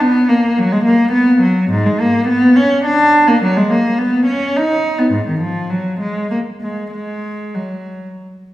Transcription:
0.01 0.29 B3 loud
0.28 0.57 A#3 medium
0.58 0.72 F#3 medium
0.72 0.86 G#3 medium
0.85 1.13 A#3 loud
1.13 1.41 B3 loud
1.42 1.71 F#3 medium
1.70 1.86 G#2 loud
1.86 2.01 G#3 medium
2.00 2.29 A#3 loud
2.28 2.56 B3 loud
2.56 2.85 C#4 loud
2.85 3.27 D4 loud
3.28 3.42 A#3 medium
3.42 3.56 F#3 loud
3.57 3.71 G#3 medium
3.70 3.99 A#3 medium
3.99 4.28 B3 medium
4.26 4.56 C#4 medium
4.56 5.00 D#4 loud
4.99 5.14 B3 medium
5.12 5.28 G#2 medium
5.28 5.43 D#3 medium
5.41 5.71 F3 medium
5.70 6.01 F#3 medium
6.01 6.31 G#3 medium
6.31 6.39 A#3 medium
6.61 6.90 G#3 medium
6.91 7.53 G#3 medium
7.55 8.16 F#3 medium

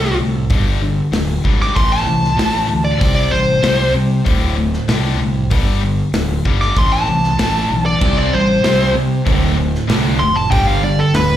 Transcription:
0.00 0.11 C2 medium
0.00 0.16 D2 medium
0.00 0.17 A2 loud
0.00 0.17 D3 medium
0.00 0.16 A4 medium
0.18 0.44 C2 medium
0.18 0.47 D2 medium
0.18 0.47 A2 medium
0.50 1.00 G1 medium
0.50 0.80 G2 medium
0.50 0.80 D3 loud
0.50 0.80 G3 medium
0.50 kick loud
0.50 open hi-hat medium
0.82 1.10 G2 medium
0.82 1.10 D3 medium
1.12 1.37 D1 medium
1.12 1.41 G2 medium
1.12 1.41 D3 medium
1.12 snare loud
1.12 open hi-hat medium
1.44 1.69 G#1 medium
1.44 1.74 G2 medium
1.44 1.74 D3 loud
1.44 1.74 G3 loud
1.44 kick medium
1.62 1.76 D6 medium
1.62 snare soft
1.75 2.01 A1 medium
1.75 2.04 A2 medium
1.75 2.04 E3 medium
1.75 2.06 A3 medium
1.75 1.91 C6 medium
1.75 kick loud
1.75 open hi-hat medium
1.92 2.83 A5 medium
2.05 2.31 C2 medium
2.05 2.35 A2 medium
2.05 2.35 E3 medium
2.25 snare soft
2.37 2.63 A1 loud
2.37 2.67 A2 medium
2.37 2.68 E3 medium
2.37 2.68 A3 loud
2.37 snare loud
2.37 open hi-hat medium
2.68 2.94 D2 medium
2.68 2.98 A2 medium
2.68 2.98 E3 medium
2.85 3.14 D5 medium
2.98 3.26 C2 loud
2.98 3.29 C3 medium
2.98 3.30 G3 medium
2.98 3.30 C4 loud
2.98 kick loud
2.98 open hi-hat medium
3.15 3.31 D5 loud
3.31 3.57 A1 medium
3.31 3.60 C3 medium
3.31 3.60 G3 medium
3.31 3.93 C5 loud
3.62 3.88 C2 loud
3.62 3.93 C3 medium
3.62 3.93 G3 loud
3.62 3.94 C4 loud
3.62 snare loud
3.62 open hi-hat medium
3.94 4.19 C3 medium
3.94 4.23 C3 medium
3.94 4.23 G3 medium
4.25 4.76 D1 medium
4.25 4.55 D2 medium
4.25 4.55 A2 loud
4.25 4.56 D3 medium
4.25 kick loud
4.25 open hi-hat medium
4.57 4.86 D2 medium
4.57 4.86 A2 medium
4.73 snare soft
4.88 5.13 C2 medium
4.88 5.18 D2 medium
4.88 5.18 A2 medium
4.88 5.19 D3 medium
4.88 snare loud
4.88 open hi-hat medium
5.19 5.44 C2 medium
5.19 5.48 D2 medium
5.19 5.48 A2 medium
5.50 6.01 G1 medium
5.50 5.80 G2 medium
5.50 5.81 D3 medium
5.50 5.82 G3 loud
5.50 kick loud
5.50 open hi-hat medium
5.82 6.11 G2 medium
5.82 6.11 D3 medium
6.13 6.38 D1 medium
6.13 6.43 G2 medium
6.13 6.43 D3 medium
6.13 snare loud
6.13 open hi-hat medium
6.45 6.70 G1 medium
6.45 6.75 G2 medium
6.45 6.75 D3 medium
6.45 6.76 G3 loud
6.45 kick medium
6.61 6.78 D6 medium
6.61 snare soft
6.76 7.01 A1 medium
6.76 7.07 A2 medium
6.76 7.07 E3 medium
6.76 7.07 A3 medium
6.76 6.93 C6 medium
6.76 kick loud
6.76 open hi-hat medium
6.92 7.84 A5 loud
7.08 7.33 C2 medium
7.08 7.36 A2 medium
7.08 7.37 E3 medium
7.24 snare soft
7.38 7.63 A1 medium
7.38 7.69 A2 medium
7.38 7.69 E3 medium
7.38 7.70 A3 loud
7.38 snare loud
7.38 open hi-hat medium
7.70 7.95 B1 medium
7.70 7.99 A2 medium
7.70 7.99 E3 medium
7.86 8.16 D5 medium
8.01 8.26 C2 medium
8.01 8.31 C3 medium
8.01 8.31 G3 medium
8.01 8.32 C4 medium
8.01 kick loud
8.01 crash loud
8.18 8.33 D5 medium
8.33 8.58 A1 medium
8.33 8.62 C3 medium
8.33 8.62 G3 medium
8.33 8.94 C5 loud
8.64 8.89 C2 medium
8.64 8.94 C3 medium
8.64 8.94 G3 medium
8.64 8.95 C4 loud
8.64 snare loud
8.64 open hi-hat medium
8.95 9.20 C3 medium
8.95 9.24 C3 medium
8.95 9.24 G3 medium
9.25 9.75 D1 medium
9.25 9.56 D2 medium
9.25 9.56 A2 medium
9.25 9.56 D3 loud
9.25 kick loud
9.25 open hi-hat medium
9.57 9.86 D2 medium
9.57 9.86 A2 medium
9.75 snare soft
9.87 10.14 C2 medium
9.87 10.18 D2 medium
9.87 10.18 A2 loud
9.87 10.18 D3 loud
9.87 snare loud
9.87 open hi-hat medium
10.19 10.45 F1 medium
10.19 10.48 D2 medium
10.19 10.49 A2 medium
10.19 10.35 C6 loud
10.36 10.51 A5 medium
10.50 11.01 G1 loud
10.50 10.80 G2 medium
10.50 10.81 D3 loud
10.50 10.81 G3 loud
10.50 10.67 G5 medium
10.50 kick loud
10.50 open hi-hat medium
10.67 10.82 F5 medium
10.82 11.11 G2 medium
10.82 11.11 D3 medium
10.82 10.99 D5 medium
10.99 11.14 A4 loud
11.14 11.37 D1 loud
11.14 11.37 G2 medium
11.14 11.37 D3 medium
11.14 11.37 B4 loud
11.14 snare loud
11.14 open hi-hat medium

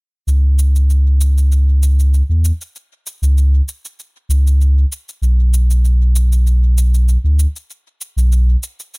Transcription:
0.27 2.23 C#2 medium
0.27 shaker soft
0.59 shaker medium
0.76 shaker soft
0.90 shaker soft
1.21 shaker medium
1.38 shaker soft
1.52 shaker soft
1.83 shaker medium
2.00 shaker soft
2.14 shaker soft
2.29 2.52 E2 medium
2.45 shaker medium
2.61 shaker soft
2.76 shaker soft
3.07 shaker medium
3.22 3.61 C#2 loud
3.22 shaker soft
3.38 shaker soft
3.68 shaker medium
3.85 shaker soft
3.99 shaker soft
4.29 4.85 C#2 medium
4.29 shaker medium
4.47 shaker soft
4.61 shaker soft
4.92 shaker medium
5.09 shaker soft
5.22 7.17 B1 medium
5.22 shaker soft
5.54 shaker medium
5.71 shaker soft
5.85 shaker soft
6.16 shaker medium
6.32 shaker soft
6.47 shaker soft
6.78 shaker medium
6.94 shaker soft
7.09 shaker soft
7.24 7.47 D2 medium
7.39 shaker medium
7.56 shaker soft
7.70 shaker soft
8.01 shaker medium
8.17 8.56 B1 loud
8.17 shaker soft
8.32 shaker soft
8.63 shaker medium
8.80 shaker soft
8.94 shaker soft

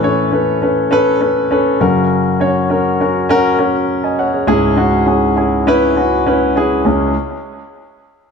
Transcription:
0.00 1.76 A2 medium
0.00 1.76 E3 medium
0.00 0.03 C#4 medium
0.00 0.26 C#4 medium
0.00 0.03 A4 medium
0.00 0.26 A4 medium
0.00 0.33 B4 loud
0.00 0.26 C#5 medium
0.32 0.55 C#4 medium
0.32 0.55 A4 medium
0.32 0.56 B4 medium
0.62 0.85 C#4 medium
0.62 0.85 A4 medium
0.62 0.86 B4 medium
0.91 1.14 C#4 medium
0.91 1.15 A4 medium
0.91 1.15 B4 loud
1.21 1.44 C#4 medium
1.21 1.44 A4 medium
1.21 1.45 B4 medium
1.51 1.74 C#4 medium
1.51 1.75 A4 medium
1.51 1.75 B4 medium
1.80 4.15 F#2 medium
1.80 4.14 C#3 medium
1.80 2.28 C#4 medium
1.80 2.28 F#4 medium
1.80 2.28 A#4 medium
2.40 2.63 C#4 medium
2.40 2.64 F#4 medium
2.40 2.64 C#5 medium
2.70 2.93 C#4 medium
2.70 2.93 F#4 medium
2.70 2.94 A#4 medium
3.00 3.23 C#4 medium
3.00 3.23 F#4 medium
3.00 3.24 A#4 medium
3.29 3.53 C#4 loud
3.29 3.53 F#4 loud
3.29 3.53 A#4 loud
3.59 3.82 C#4 medium
3.59 3.82 F#4 medium
3.59 3.82 A#4 medium
4.04 4.18 D#5 medium
4.04 4.18 G#5 medium
4.19 4.32 C#5 medium
4.19 4.33 F#5 medium
4.33 4.46 G#4 medium
4.33 4.61 C#5 medium
4.47 6.81 C#2 medium
4.47 6.81 G#2 medium
4.47 4.71 C#4 loud
4.47 4.71 E4 medium
4.47 4.71 G#4 loud
4.77 5.00 C#4 medium
4.77 5.01 E4 medium
4.77 5.01 F#4 medium
5.06 5.30 C#4 medium
5.06 5.30 E4 medium
5.06 5.31 G#4 medium
5.37 5.60 C#4 medium
5.37 5.60 E4 medium
5.37 5.61 G#4 medium
5.67 5.90 C#4 loud
5.67 5.90 E4 loud
5.67 5.91 B4 loud
5.96 6.20 C#4 medium
5.96 6.20 E4 medium
5.96 6.20 F#4 medium
6.27 6.50 C#4 medium
6.27 6.50 E4 medium
6.27 6.50 B4 medium
6.56 6.79 C#4 medium
6.56 6.79 E4 medium
6.56 6.80 G#4 loud
6.85 7.13 C#2 medium
6.85 7.13 C#4 medium
6.85 7.13 E4 medium
6.85 7.13 G#4 medium

